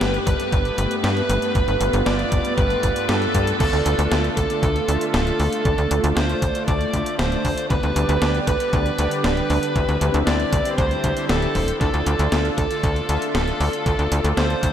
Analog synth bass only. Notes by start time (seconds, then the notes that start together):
0.01 G1
0.27 G1
0.53 G1
0.78 G1
1.04 G2
1.30 G1
1.55 G1
1.68 G1
1.81 G1
1.94 G1
2.07 G1
2.32 G1
2.58 G1
2.83 G1
3.09 G2
3.35 G2
3.60 D2
3.73 D2
3.86 D2
3.99 D2
4.12 D2
4.37 D2
4.63 D2
4.89 D2
5.14 D1
5.40 D2
5.65 D2
5.78 D2
5.91 D2
6.04 D2
6.17 D2
6.42 D2
6.68 D2
6.94 D2
7.19 D1
7.45 D2
7.71 D2
7.83 D2
7.96 D2
8.09 D2
8.22 D2
8.48 D2
8.73 D2
8.99 D2
9.24 D1
9.50 D2
9.76 D2
9.89 D2
10.01 D2
10.14 D2
10.27 D2
10.53 D2
10.78 D2
11.04 D2
11.30 D1
11.55 D1
11.81 D2
11.94 D2
12.07 D2
12.19 D2
12.32 D2
12.58 D2
12.84 D2
13.09 D2
13.35 D1
13.60 D2
13.86 D2
13.99 D2
14.12 D2
14.24 D2
14.37 D2
14.63 D2